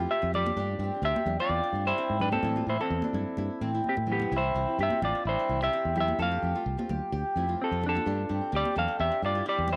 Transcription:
Already playing: G4
0.00 A3 C4 F4 G4
0.11 G4 E5
0.22 F2 F4
0.33 F3 A3 C4 G4 D5, low conga
0.46 D4, high conga
0.56 G2 A3 D4 G4
0.79 G2 A3 C4 D4
0.84 G4
0.94 D4 G4
1.02 D2 C4 G4 E5
1.16 D4 G4, high conga
1.26 E2 D4, low conga
1.40 C4 F4 D5
1.49 E2
1.64 D4
1.73 G2 A3 D4, muted steel-string acoustic guitar stroke
1.85 D4 E4 G4 C5
1.98 C4
2.10 G#2
2.20 A3 D4 G4 B4, low conga
2.32 C4 A4, high conga
2.43 A2 E3 C4 E4, low conga
2.56 F4, high conga
2.67 A2 E3 C4 E4 C5
2.81 C4 E4 A4, muted steel-string acoustic guitar stroke
2.90 E2
3.02 C4 D4 E4, high conga
3.13 G2 E4, low conga
3.37 G2 E4, high conga
3.61 A2 E3 C4 E4
3.73 C4 E4
3.84 high conga
3.89 C4 G4
3.97 A2, high conga
4.06 E3 C4 E4, low conga
4.12 B3 G4
4.20 C4, low conga
4.31 C2 E3 C4 E4 G4
4.36 E4 C5
4.54 C2 E3 C4 E4 G4
4.67 C4 E4 G4
4.79 G2 C4 G4
4.83 E5
4.90 C4 E4 G4, high conga
5.02 A1 D4 F4 D5, low conga
5.15 C4
5.25 A1 E4 C5
5.39 D4
5.49 C2 E3 C4 E4 G4
5.60 C4 E4 G4 E5
5.73 C4
5.85 E2
5.95 E3 C4 E4 G4, low conga
6.00 E5
6.08 high conga
6.18 F2 F3 A3 C4 F4 G4 A4 F5
6.32 G4
6.42 F2 F3 A3 C4 G4
6.55 A3 C4 F4 G4
6.66 C2
6.77 A3 C4 F4 G4, high conga
6.89 D2 G4, low conga
7.12 D2 G4
7.36 F2 F3 A3 C4 E4 G4
7.47 A3 C4 F4 G4
7.62 C4 A4
7.71 F2 F4
7.81 A3 C4 G4, muted steel-string acoustic guitar stroke, low conga
7.86 D4 A4
7.95 F4, high conga
8.06 G2 A3 D4 G4
8.29 G2 A3 C4 D4 G4
8.41 D4 G4
8.52 D2 C4 G4
8.56 D5
8.64 D4 G4, high conga
8.76 E2 D4 A4 F5, low conga
8.88 C4
8.99 E2 G4 E5
9.12 D4
9.22 G2 A3 D4 F4 G4 D5
9.35 D4 E4 G4
9.46 C4 G4 D5
9.58 E2
9.68 A3 D4 G4, low conga
9.73 E4 C5

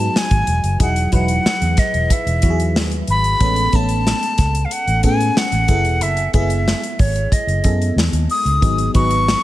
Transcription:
Already playing: F#3 G#3 B3 D#4 F#4 G#4 A5
0.16 G#5, snare
0.31 G#1, kick, closed hi-hat
0.47 E1, closed hi-hat
0.64 F#1, closed hi-hat
0.79 E1 F#3 D#4 E4 G#4 F#5, kick, closed hi-hat
0.96 closed hi-hat
1.12 E1 F#3 D#4 E4 B4 F#5, kick, closed hi-hat
1.28 closed hi-hat
1.45 muted fingered electric bass stroke, snare
1.61 E2, closed hi-hat
1.77 D#5, kick, snare, closed hi-hat
1.94 E1, closed hi-hat
2.10 E5, kick, closed hi-hat
2.26 E1, closed hi-hat
2.42 E2 F#3 E4 F#4, kick, closed hi-hat
2.50 G#4
2.60 closed hi-hat
2.75 D#2, snare
2.92 closed hi-hat
3.08 G#1 B5, closed hi-hat
3.24 closed hi-hat
3.40 A1 G#3 B3 C#4 A4, kick, closed hi-hat
3.56 closed hi-hat
3.72 A1 A3 B3 C#4 A4 A5, kick, closed hi-hat
3.89 closed hi-hat
4.07 snare
4.23 closed hi-hat
4.38 C#2, kick, snare, closed hi-hat
4.55 closed hi-hat
4.65 F5
4.71 F#5, closed hi-hat
4.87 A1, closed hi-hat
5.03 A2 B3 C#4 G#4 A4 G#5, kick, closed hi-hat
5.20 closed hi-hat
5.37 F#5, snare
5.52 A1, closed hi-hat
5.68 F#1 B3 E4 G#4 A4, kick, closed hi-hat
5.84 E1, closed hi-hat
6.01 F#1 E5, closed hi-hat
6.17 closed hi-hat
6.33 F#1 G#3 B3 E4 G#4 E5, kick, closed hi-hat
6.50 closed hi-hat
6.68 snare
6.83 closed hi-hat
6.99 G#1 C#5, kick, open hi-hat
7.16 closed hi-hat
7.32 D#5, kick, closed hi-hat
7.47 F#1, closed hi-hat
7.64 F#2 B3 E4 G#4 A4, kick, closed hi-hat
7.82 closed hi-hat
7.96 E2, snare
8.13 D#2, closed hi-hat
8.30 D#6, open hi-hat
8.45 C#2, closed hi-hat
8.61 G#1 F#3 B3 D#4 G#4, kick, closed hi-hat
8.78 closed hi-hat
8.94 G#1 F#3 B3 D#4 B4 C#6, kick, closed hi-hat
9.11 closed hi-hat
9.28 snare

